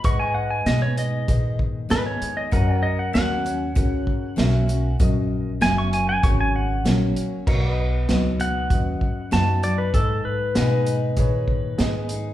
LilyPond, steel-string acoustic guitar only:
\new Staff \with { instrumentName = "Steel-string acoustic guitar" } { \time 4/4 \key b \major \tempo 4 = 97 << { r4 <gis b dis' gis'>4 r4 <gis b dis' gis'>4 | r4 <fis ais cis' fis'>8 <cis' fis'>8 r4 <fis ais cis' fis'>8 <cis' fis'>8 | r4 <fis ais cis' fis'>4 r4 <fis ais cis' fis'>4 | r4 <fis b dis' fis'>4 r4 <fis b dis' fis'>8 <dis' fis'>8 |
r4 <gis b dis' gis'>4 r4 <gis b dis' gis'>8 <dis' gis'>8 | } \\ { gis,2 dis2 | fis,2 cis2 | fis,2 cis2 | b,2 fis,2 |
gis,2 dis2 | } >> }